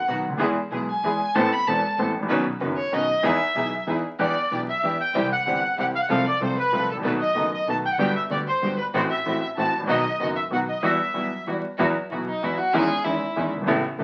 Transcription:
0.08 B1 B2 D#3 F#3 B3 D#4 F#4
0.25 C#2 D2
0.32 D2
0.37 D#2 E2 E3 G#3 B3 E4 G#4
0.71 B1 B2 E3 G#3 B3 E4 G#4
0.90 G#5
1.03 E2 E3 G#3 B3 E4 G#4
1.35 A1 A2 E3 B3 C4 A4 A5
1.53 B5
1.67 E1 E2 E3 B3 C4 A4 A5
1.98 A1 A2 E3 B3 C4 A4
2.14 A1
2.18 G#1 A1
2.26 A#1 B1 B2 D#3 B3 C#4 D#4 F#4 B4
2.60 F#1 F#2 D#3 B3 C#4 D#4 F#4 B4
2.77 C#5
2.92 B1 B2 D#3 B3 C#4 D#4 F#4 B4 D#5
3.23 E2 E3 B3 D#4 E4 G#4 E5
3.55 B1 B2 E3 B3 D#4 E4 G#4
3.87 E2 E3 B3 D#4 E4 G#4
4.19 E2 E3 B3 D4 E4 G4 D5
4.51 B1 B2 E3 B3 D4 E4 G4 D5
4.69 E5
4.83 E2 E3 B3 D4 E4 G4
5.01 G5
5.14 C2 C3 E3 G3 C4 E4 G4
5.32 F#5
5.46 G1 G2 E3 G3 C4 E4 G4
5.77 C2 C3 E3 G3 C4 E4 G4 F#5
5.95 F5
6.01 F#5
6.08 C2 C3 F3 A3 C4 F4 A4 F5
6.27 D5
6.40 C2 C3 F3 A3 C4 F4 A4 C5
6.58 B4
6.72 C2 C3 F3 A3 C4 F4 A4
6.88 A1 A4
6.93 G#1
6.97 A1 A#1
7.03 B1 B2 D#3 A3 B3 D#4 F#4 A4 B4
7.21 D#5
7.35 F#1 F#2 D#3 A3 B3 D#4 F#4 A4
7.54 D#5
7.66 B1 B2 D#3 A3 B3 D#4 F#4 A4 A5
7.71 A5
7.85 G5
7.92 F#5
7.98 G1 G2 D3 G3 B3 F#4 G4 G5
8.16 E5
8.30 D2 D3 G3 B3 F#4 G4 D5
8.47 C5
8.62 G1 G2 D3 G3 B3 F#4 G4
8.77 B4
8.94 A1 A2 E3 A3 C4 E4 F#4 C5
9.10 E5
9.26 A1 A2 E3 A3 C4 E4 F#4
9.41 E5
9.57 A1 A2 E3 A3 C4 E4 F#4 A5
9.74 G#1 A1
9.80 A1 A#1
9.87 B1 B2 D#3 F#3 B3 D#4 F#4 D#5
10.20 F#1 F#2 D#3 F#3 B3 D#4 F#4 D#5
10.36 E5
10.51 B1 B2 D#3 F#3 B3 D#4 F#4 F#5
10.69 D#5
10.83 E2 E3 G3 B3 E4 F#4 E5
11.14 B1 B2 E3 G3 B3 E4 F#4
11.47 E2 E3 G3 B3 E4 F#4
11.78 E2 E3 F#3 B3 E4 F#4
12.11 B1 B2 E3 F#3 B3 E4 F#4
12.29 D#4
12.42 E2 E3 F#3 B3 E4 F#4
12.58 F#4
12.74 E2 D#3 E3 G#3 C#4 D#4 E4 G#4
13.05 E2 D#3 E3 G#3 C#4 D#4 E4
13.36 E2 D#3 E3 G#3 C#4 D#4 E4
13.53 F#1 G1
13.61 G1 G#1
13.67 A1 A2 C#3 A3 B3 C#4 E4 A4
13.99 E1 E2 C#3 A3 B3 C#4 E4 A4

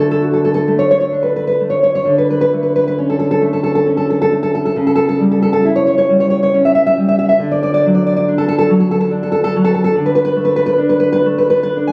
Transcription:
Already playing: D3 A3
0.00 A4
0.11 A4
0.22 F#4
0.33 A4
0.45 A4
0.54 A4
0.68 A3
0.79 C#5
0.91 C#5
1.00 C#5
1.12 D4
1.23 B4
1.36 B4
1.47 B4
1.61 A3
1.70 C#5
1.83 C#5
1.95 C#5
2.05 D3
2.18 B4
2.30 B4
2.41 B4
2.53 A3
2.63 B4
2.76 B4
2.88 B4
2.98 C#4
3.10 A4
3.19 A4
3.31 A4
3.41 A3
3.53 A4
3.64 A4
3.75 A4
3.86 C#4
3.97 A4
4.10 A4
4.22 A4
4.32 A3
4.43 A4
4.55 A4
4.65 A4
4.76 C#3
4.87 A4
4.96 A4
5.09 A4
5.19 G3
5.32 A4
5.42 A4
5.53 A4
5.65 E4
5.76 C#5
5.87 C#5
5.98 C#5
6.09 G3
6.20 C#5
6.30 C#5
6.43 C#5
6.54 C#4
6.65 E5
6.75 E5
6.87 E5
6.98 G3
7.08 E5
7.19 E5
7.29 E5
7.39 D3
7.51 D5
7.63 D5
7.74 D5
7.86 F#3
7.95 D5
8.07 D5
8.17 D5
8.28 D4
8.38 A4
8.48 A4
8.59 A4
8.70 F#3
8.80 A4
8.91 A4
9.01 A4
9.11 D4
9.23 A4
9.32 A4
9.44 A4
9.56 F#3
9.64 A4
9.75 A4
9.84 A4
9.96 D3
10.06 B4
10.15 B4
10.25 B4
10.36 A3
10.45 B4
10.56 B4
10.66 B4
10.78 D4
10.89 B4
11.00 B4
11.13 B4
11.26 A3
11.38 B4
11.50 B4
11.63 B4
11.77 D4
11.87 G#5

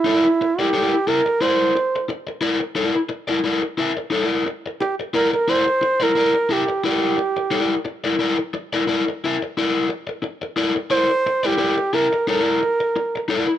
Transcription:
Already playing: E4
0.04 E4 A#4 D5
0.26 muted overdriven electric guitar stroke
0.41 muted overdriven electric guitar stroke
0.59 E4 G4 A#4 D5
0.73 E4 A#4 D5
0.93 muted overdriven electric guitar stroke
1.07 E4 A#4 E5
1.26 muted overdriven electric guitar stroke
1.41 E4 A#4 C5 D5
1.75 muted overdriven electric guitar stroke
1.96 muted overdriven electric guitar stroke
2.08 muted overdriven electric guitar stroke
2.27 muted overdriven electric guitar stroke
2.41 E4 A#4 D5
2.60 muted overdriven electric guitar stroke
2.75 E4 A#4 D5
2.95 muted overdriven electric guitar stroke
3.09 muted overdriven electric guitar stroke
3.28 E4 A#4 D5
3.44 E4 A#4 D5
3.62 muted overdriven electric guitar stroke
3.78 E4 A#4 E5
3.97 muted overdriven electric guitar stroke
4.10 D#4 A4 C#5
4.24 E4 A#4 D5
4.46 muted overdriven electric guitar stroke
4.66 muted overdriven electric guitar stroke
4.81 G4, muted overdriven electric guitar stroke
5.00 muted overdriven electric guitar stroke
5.14 E4 A#4 D5
5.34 A#4, muted overdriven electric guitar stroke
5.48 E4 A#4 C5 D5
5.66 muted overdriven electric guitar stroke
5.81 muted overdriven electric guitar stroke
6.00 E4 A#4 D5
6.15 E4 A#4 D5
6.35 muted overdriven electric guitar stroke
6.49 E4 G4 A#4 E5
6.69 muted overdriven electric guitar stroke
6.84 E4 G4 A#4 D5
7.18 muted overdriven electric guitar stroke
7.37 muted overdriven electric guitar stroke
7.51 E4 A#4 D5
7.85 muted overdriven electric guitar stroke
8.04 E4 A#4 D5
8.19 E4 A#4 D5
8.38 muted overdriven electric guitar stroke
8.54 muted overdriven electric guitar stroke
8.73 E4 A#4 D5
8.87 E4 A#4 D5
9.08 muted overdriven electric guitar stroke
9.24 E4 A#4 E5
9.42 muted overdriven electric guitar stroke
9.57 E4 A#4 D5
9.90 muted overdriven electric guitar stroke
10.07 muted overdriven electric guitar stroke
10.22 muted overdriven electric guitar stroke
10.42 muted overdriven electric guitar stroke
10.56 E4 A#4 D5
10.76 muted overdriven electric guitar stroke
10.90 E4 A#4 C5 D5
11.10 muted overdriven electric guitar stroke
11.26 muted overdriven electric guitar stroke
11.43 E4 G4 A#4 D5
11.58 E4 A#4 D5
11.78 muted overdriven electric guitar stroke
11.93 E4 A#4 E5
12.13 muted overdriven electric guitar stroke
12.27 D#4 A4 A#4 C#5
12.40 E4 A#4 D5
12.61 muted overdriven electric guitar stroke
12.80 muted overdriven electric guitar stroke
12.96 muted overdriven electric guitar stroke
13.16 muted overdriven electric guitar stroke
13.28 E4 A#4 D5
13.47 muted overdriven electric guitar stroke

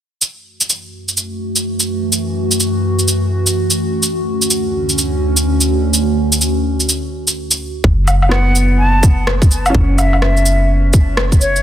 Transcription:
0.22 F#2 E3 A3 F#4, shaker
0.61 shaker
0.70 shaker
1.08 shaker
1.17 shaker
1.56 shaker
1.80 shaker
2.13 shaker
2.51 shaker
2.60 shaker
2.99 shaker
3.08 shaker
3.47 shaker
3.70 shaker
4.03 D2 D3 C#4, shaker
4.42 shaker
4.51 shaker
4.89 shaker
4.98 shaker
5.37 shaker
5.61 shaker
5.94 shaker
6.32 shaker
6.41 shaker
6.80 shaker
6.89 shaker
7.28 shaker
7.51 shaker
7.84 F#1, kick
8.08 low woodblock, shaker
8.22 low woodblock
8.29 B3 F#5, cross-stick
8.55 shaker
8.78 A5
9.03 kick, shaker
9.27 cross-stick
9.42 kick, shaker
9.51 shaker
9.66 C#4, low woodblock, shaker
9.75 F#1, kick
9.98 E5, low woodblock, shaker
10.13 low woodblock
10.22 E5, cross-stick
10.37 shaker
10.46 shaker
10.93 kick, shaker
11.17 cross-stick
11.32 kick, shaker
11.41 C#5, shaker
11.56 shaker

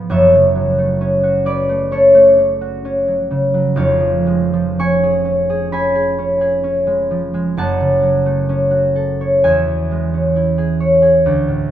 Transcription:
Already playing: G#2 F3 G#3 B3 F4 B4 F5
0.09 F#1 F#2 C#5 E5
0.34 C#3
0.55 F#3
0.78 A3
1.01 C#4
1.23 F#4
1.45 C#4 B4 D5
1.69 A3
1.91 C#4 A4 C#5
2.15 A3
2.38 C#4
2.61 F#4
2.85 C#4
3.08 F#3
3.31 C#3
3.54 F#3
3.76 F1 F2 C#5 F5
4.01 F3
4.27 G#3
4.53 F3
4.79 C#4 G#5 C#6
5.03 G#4
5.25 C#4
5.50 G#4
5.72 C#4 G#5 B5
5.95 G#4
6.18 C#4
6.41 G#4
6.64 C#4
6.87 G#3
7.11 F3
7.34 G#3
7.57 F#1 F#2 F#5 A5
7.81 C#3
8.03 F#3
8.26 A3
8.49 C#4
8.71 F#4
8.96 A4
9.21 C#5
9.44 E2 E5 G#5
9.67 E3
9.91 G#3
10.14 C#4
10.36 E4
10.58 G#4
10.80 C#5
11.02 G#4
11.26 D2
11.48 A2

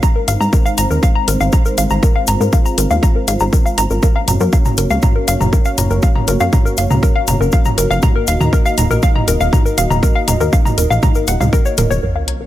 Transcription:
0.03 G#3 C4 D#4 C5 A#5, kick, shaker
0.16 A#4
0.28 G#1 F5, closed hi-hat, shaker
0.40 G#2 A#5, shaker
0.53 A#4, kick, shaker
0.66 F5, shaker
0.78 G#1 A#5, closed hi-hat, shaker
0.91 D#2 A#4, shaker
1.03 F5, kick, shaker
1.15 A#5
1.28 G#1 A#4, closed hi-hat, shaker
1.41 G#1 F5, shaker
1.52 A#5, kick, shaker
1.66 A#4, shaker
1.78 G#1 F5, closed hi-hat, shaker
1.90 G#1 A#5, shaker
2.03 F4 A#4, kick, shaker
2.16 F5
2.27 G#1 A#5, closed hi-hat, shaker
2.40 G#2 A#4, shaker
2.53 F5, kick, shaker
2.65 A#5, shaker
2.78 G#1 A#4, closed hi-hat, shaker
2.90 D#2 F5, shaker
3.03 A#5, kick, shaker
3.16 A#4
3.28 G#1 F5, closed hi-hat, shaker
3.40 G#1 A#5, shaker
3.53 A#4, kick, shaker
3.66 F5, shaker
3.78 G#1 A#5, closed hi-hat, shaker
3.90 G#1 A#4, shaker
4.03 A#3 C#4 F#4 A#4 C#5, kick, shaker
4.16 F5
4.28 F#1 A#5, closed hi-hat, mid tom, shaker
4.40 F#2 A#4, shaker
4.53 F5, kick, shaker
4.65 A#5, mid tom, shaker
4.77 F#1 A#4, closed hi-hat, shaker
4.90 C#2 F5, shaker
5.02 A#5, kick, mid tom, shaker
5.16 A#4
5.28 F#1 F5, closed hi-hat, shaker
5.41 F#1 A#5, mid tom, shaker
5.53 A#4, kick, shaker
5.65 F5, shaker
5.78 F#1 A#5, closed hi-hat, mid tom, shaker
5.90 F#1 A#4, shaker
6.02 F5, kick, shaker
6.15 A#5, mid tom
6.28 F#1 A#4, closed hi-hat, shaker
6.40 F#2 F5, shaker
6.53 A#5, kick, mid tom, shaker
6.65 A#4, shaker
6.77 F#1 F5, closed hi-hat, shaker
6.90 C#2 A#5, mid tom, shaker
7.03 A#4, kick, shaker
7.15 F5
7.27 F#1 A#5, closed hi-hat, mid tom, shaker
7.41 F#1 A#4, shaker
7.52 F5, kick, shaker
7.65 A#5, mid tom, shaker
7.78 F#1 A#4, closed hi-hat, shaker
7.91 F#1 F5, shaker
8.02 D#4 D#5 A#5, kick, mid tom, shaker
8.16 A#4
8.27 D#1 F5, closed hi-hat, shaker
8.40 D#2 A#5, mid tom, shaker
8.53 A#4, kick, shaker
8.66 F5, shaker
8.78 D#1 A#5, closed hi-hat, mid tom, shaker
8.90 A#1 A#4, shaker
9.02 F5, kick, shaker
9.15 A#5, mid tom
9.28 D#1 A#4, closed hi-hat, shaker
9.40 D#1 F5, shaker
9.53 A#5, kick, mid tom, shaker
9.66 A#4, shaker
9.78 D#1 F5, closed hi-hat, shaker
9.90 D#1 A#5, mid tom, shaker
10.03 A#4, kick, shaker
10.15 F5
10.28 D#1 A#5, closed hi-hat, mid tom, shaker
10.40 D#2 A#4, shaker
10.53 F5, kick, shaker
10.65 A#5, mid tom, shaker
10.78 D#1 A#4, closed hi-hat, shaker
10.90 A#1 F5, shaker
11.03 A#5, kick, mid tom, shaker
11.15 A#4, shaker
11.27 D#1 F#5, closed hi-hat, shaker
11.40 C#2 F5, mid tom, shaker
11.53 A#4, kick, shaker
11.65 C#5, shaker
11.78 D#1 A#4, closed hi-hat, mid tom, shaker
11.91 D#1 C#5, shaker
12.03 A#1 A#3 C#4 F4 A#4 C5, sub drop
12.16 F5
12.28 A#5, closed hi-hat
12.41 A#4

